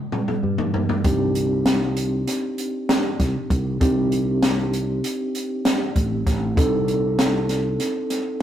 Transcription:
0.12 mid tom
0.28 mid tom
0.43 fretless electric bass G2
0.58 floor tom
0.74 floor tom
0.89 floor tom
1.04 fretless electric bass C2, tine electric piano C4 D4 D#4 G4, kick, closed hi-hat
1.35 closed hi-hat
1.66 snare, closed hi-hat
1.97 closed hi-hat
2.27 snare, closed hi-hat
2.58 closed hi-hat
2.89 snare, closed hi-hat
3.20 fretless electric bass C2, kick, snare, closed hi-hat
3.50 fretless electric bass C2, kick, closed hi-hat
3.81 fretless electric bass C2, tine electric piano C4 D4 D#4 G4, kick, closed hi-hat
4.12 closed hi-hat
4.43 snare, closed hi-hat
4.73 closed hi-hat
5.04 closed hi-hat
5.35 closed hi-hat
5.65 snare, closed hi-hat
5.96 fretless electric bass A1, kick, closed hi-hat
6.27 fretless electric bass A1, kick, snare, closed hi-hat
6.56 fretless electric bass C2, tine electric piano C4 D4 D#4 A4, kick, closed hi-hat
6.88 closed hi-hat
7.19 snare, closed hi-hat
7.49 snare, closed hi-hat
7.80 snare, closed hi-hat
8.10 snare, closed hi-hat

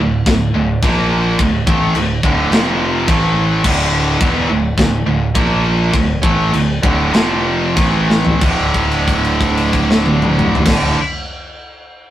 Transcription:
0.00 fingered electric bass D1, distorted electric guitar D2 A2
0.26 fingered electric bass D1, distorted electric guitar D2 A2, kick, snare, china
0.54 fingered electric bass D1, distorted electric guitar D2 A2
0.83 fingered electric bass A#1, distorted electric guitar A#2 F3 A#3, kick, china
1.39 fingered electric bass D1, distorted electric guitar D2 A2, kick, china
1.67 fingered electric bass A1, distorted electric guitar A2 E3 A3, kick
1.95 fingered electric bass D1, distorted electric guitar D2 A2, china
2.23 fingered electric bass D1, distorted electric guitar D2 A2 D3, kick
2.51 fingered electric bass F1, distorted electric guitar F2 C3 F3, snare, china
3.08 fingered electric bass A1, distorted electric guitar A2 E3 A3, kick, china
3.64 fingered electric bass D1, distorted electric guitar D2 A2 D3, kick, china, crash
4.21 fingered electric bass E1, distorted electric guitar E2 B2 E3, kick, china
4.49 fingered electric bass D1, distorted electric guitar D2 A2
4.78 fingered electric bass D1, distorted electric guitar D2 A2, kick, snare, china
5.07 fingered electric bass D1, distorted electric guitar D2 A2
5.35 fingered electric bass A#1, distorted electric guitar A#2 F3 A#3, kick, china
5.93 fingered electric bass D1, distorted electric guitar D2 A2, kick, china
6.23 fingered electric bass A1, distorted electric guitar A2 E3 A3, kick
6.52 fingered electric bass D1, distorted electric guitar D2 A2, china
6.83 fingered electric bass D1, distorted electric guitar D2 A2 D3, kick
7.13 fingered electric bass F1, distorted electric guitar F2 C3 F3, snare, china
7.76 fingered electric bass A1, distorted electric guitar A2 E3 A3, kick, china
8.10 snare
8.25 floor tom
8.40 fingered electric bass D1, distorted electric guitar D2 A2, kick, crash
8.44 distorted electric guitar D3
8.74 kick, crash
8.91 crash
9.08 kick, crash
9.24 crash
9.41 kick, crash
9.57 crash
9.73 kick, crash
9.91 snare
10.06 high tom
10.22 mid tom
10.39 mid tom
10.55 floor tom
10.64 fingered electric bass D1, distorted electric guitar D2 A2, kick, snare, crash
10.69 distorted electric guitar D3

